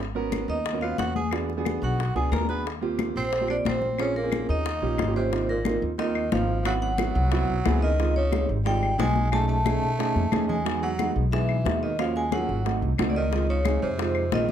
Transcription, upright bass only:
Already playing: G#1
0.48 D#2
0.99 E2
1.82 B1
2.15 C#2
2.32 D#2
3.16 A#1
3.65 A#1
4.49 D#2
4.82 A#1
4.98 G#1
5.82 D#2
6.32 G#1
7.15 C2
7.50 B1
7.66 C#2
8.49 G#1
8.98 B1
9.83 B2
10.16 F2
10.32 E2
11.16 B1
11.65 D#2
12.49 G#1
12.82 C2
12.99 C#2
13.82 F2
14.32 A#1

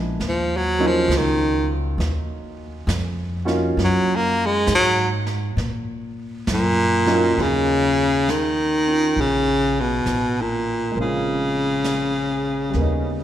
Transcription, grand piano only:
Already playing: G#3 A#3 B3 D4 E4
0.79 F#3 A#3 C#4 D#4 F4
3.45 A#3 C#4 D#4 F4 F#4
7.06 F#3 A#3 C#4 D#4 F4
7.35 F#3 A#3 C#4 D#4
7.41 F4
8.86 C#4 D#4 F4
10.91 G#3 A#3
10.97 C4 C#4
11.02 F4
12.70 G3 A#3
12.76 B3 C#4
12.81 D#4

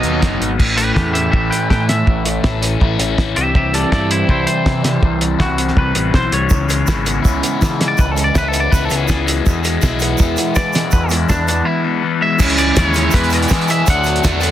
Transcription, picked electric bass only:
0.03 D#2
0.22 F#1
0.40 G#1
0.59 A1
0.96 E2
1.34 A1
1.70 A2
2.07 A1
2.44 A1
2.81 A1
2.99 A1
3.18 A1
3.37 C2
3.92 G2
4.29 C2
4.66 C3
5.03 C2
5.40 C2
5.77 C2
5.95 A1
6.14 B1
6.31 C2
6.51 C#2
6.88 G#1
7.25 C#2
7.62 C#3
7.98 C#2
8.36 C#2
8.73 C#2
8.91 C#2
9.09 C#2
9.46 E2
9.83 B1
10.19 E2
10.56 E3
10.93 E2
11.30 E2
12.40 C#2
12.77 D#2
13.14 E2
13.51 E3
13.88 D2
14.24 E2

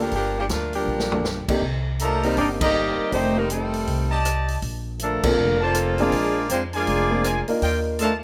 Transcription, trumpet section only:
2.01 G4 C5 D#5 A#5
2.62 G4 C5 D#5 A#5
4.11 G4 D5 D#5 A5
5.60 F4 A4 D5 A5
6.73 F4 A#4 D5 G#5
7.24 F4 A#4 D5 G#5
7.62 F4 D5 D#5 G5
7.99 F4 D5 D#5 A5

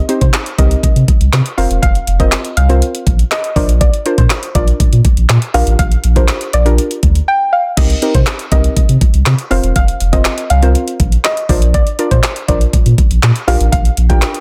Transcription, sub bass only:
0.21 C3
0.58 C2
0.83 C3
0.96 C3
1.20 C2
1.33 C3
1.58 F1
1.70 E1
1.83 F1
2.07 F1
2.57 C2
3.07 A#1
3.56 A#1
4.18 A#2
4.55 A#1
4.80 A#2
4.92 A#2
5.17 A#1
5.29 A#2
5.54 A#1
5.67 A1
5.79 A#1
6.04 A#1
6.54 A#1
7.03 D2
7.77 C2
8.15 C3
8.52 C2
8.77 C3
8.89 C3
9.14 C2
9.26 C3
9.51 F1
9.63 E1
9.76 F1
10.01 F1
10.50 C2
11.00 A#1
11.49 A#1
12.11 A#2
12.48 A#1
12.73 A#2
12.86 A#2
13.11 A#1
13.23 A#2
13.47 A#1
13.60 A1
13.73 A#1
13.97 A#1

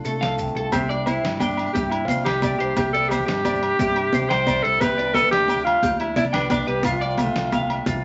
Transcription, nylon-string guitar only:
Already playing: D4 F4 A4
0.06 A3
0.24 A4
0.40 C3
0.59 F4
0.74 C3
0.92 D4
1.07 G3
1.25 D4
1.41 C3
1.58 E4
1.66 G4
1.75 C3
1.93 D4
2.09 G3
2.43 C3
2.60 D4
2.76 C3
2.93 C4
3.03 D4
3.11 G3
3.29 D4
3.44 C3
3.63 D4
3.79 C3
3.98 D4
4.15 G3
4.32 G4
4.49 C3
4.66 G4
4.83 C3
5.00 D4
5.17 G3
5.34 D4
5.50 C3
5.83 muted nylon-string guitar stroke
6.02 D4
6.17 G3
6.36 B4
6.52 C3
6.69 D4
6.86 C3
7.02 C4
7.20 A3
7.36 muted nylon-string guitar stroke
7.43 D4
7.54 C3
7.70 D4
7.87 C3

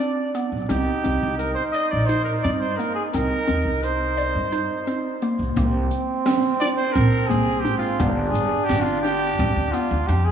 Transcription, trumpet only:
Already playing: D5
0.69 G4
1.38 A#4
1.55 C5
1.71 D#5
1.90 D5
2.06 C5
2.24 A#4
2.42 D5
2.59 C5
2.77 A#4
2.95 G#4
3.13 A#4
3.83 C5
6.60 D5
6.76 C5
6.92 A#4
7.27 G#4
7.60 G4
7.78 F4
8.29 G#4
8.64 G4
8.82 F4
9.01 G4
9.71 F4
10.07 G4
10.25 G#4

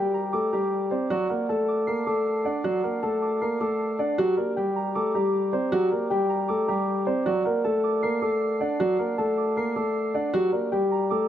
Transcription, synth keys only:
Already playing: G4 D5 G5 A#5 D6
0.14 A#5
0.33 D6
0.53 A#5
0.91 D5
1.10 D5
1.29 F#5
1.49 A5
1.68 D6
1.87 C7
2.06 D6
2.45 F#5
2.65 D5
2.83 F#5
3.02 A5
3.22 D6
3.42 C7
3.61 D6
3.99 F#5
4.18 G4
4.37 D5
4.56 G5
4.76 A#5
4.95 D6
5.15 A#5
5.53 D5
5.72 G4
5.91 D5
6.10 G5
6.30 A#5
6.48 D6
6.68 A#5
7.07 D5
7.26 D5
7.45 F#5
7.64 A5
7.84 D6
8.03 C7
8.22 D6
8.61 F#5
8.80 D5
8.99 F#5
9.18 A5
9.38 D6
9.57 C7
9.76 D6
10.15 F#5
10.34 G4
10.53 D5
10.72 G5
10.91 A#5
11.10 D6

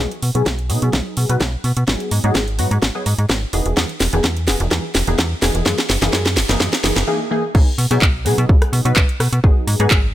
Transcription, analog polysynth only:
0.00 F#3 B3 D#4 G#4
0.35 F#3 B3 D#4 G#4
0.69 F#3 B3 D#4 G#4
1.29 F#3 B3 D#4 B4
1.88 F#3 B3 D#4 G#4
2.24 F#3 B3 D#4 G#4
2.58 F#3 B3 D#4 F#4
2.95 F#3 B3 D#4 G#4
3.53 E3 B3 D#4 G#4
3.77 E3 B3 D#4 G#4
4.13 E3 B3 D#4 G#4
4.47 E3 B3 D#4 G#4
4.71 E3 B3 D#4 G#4
5.07 E3 B3 D#4 G#4
5.41 E3 B3 D#4 G#4
5.66 E3 A#3 D#4 G#4
6.02 E3 A#3 D#4 G#4
6.13 E3 A#3 D#4 G#4
6.49 E3 A#3 D#4 G#4
6.60 E3 A#3 D#4 G#4
6.84 E3 A#3 D#4 G#4
7.07 E3 A#3 D#4 G#4
7.31 E3 A#3 D#4 G#4
7.54 F#3 B3 D#4 G#4
7.91 F#3 B3 D#4 G#4
8.25 F#3 B3 D#4 G#4
8.85 F#3 B3 D#4 B4
9.44 F#3 B3 D#4 G#4
9.80 F#3 B3 D#4 G#4

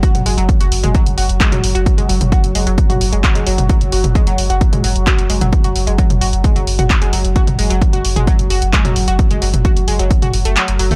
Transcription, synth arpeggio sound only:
0.03 F#4
0.26 G#3
0.37 F#3
0.61 F#4
0.83 G#3
0.95 F#3
1.18 F#4
1.40 G#3
1.52 F#3
1.75 F#4
1.98 G#3
2.09 F#3
2.32 F#4
2.55 G#3
2.67 F#3
2.89 F#4
3.12 G#3
3.24 F#3
3.35 G#3
3.47 F#3
3.69 F#3
3.92 F#4
4.15 G#3
4.27 F#3
4.50 F#4
4.73 G#3
4.84 F#3
5.07 F#4
5.30 G#3
5.41 F#3
5.64 F#4
5.87 G#3
5.98 F#3
6.21 F#4
6.44 G#3
6.56 F#3
6.79 F#4
7.02 G#3
7.13 F#3
7.36 F#4
7.59 G#3
7.70 F#3
7.93 F#4
8.16 G#3
8.27 F#3
8.50 F#4
8.73 G#3
8.85 F#3
9.08 F#4
9.31 G#3
9.42 F#3
9.65 F#4
9.88 G#3
9.99 F#3
10.22 F#4
10.45 A3
10.56 F#3
10.79 F#3
10.91 A3

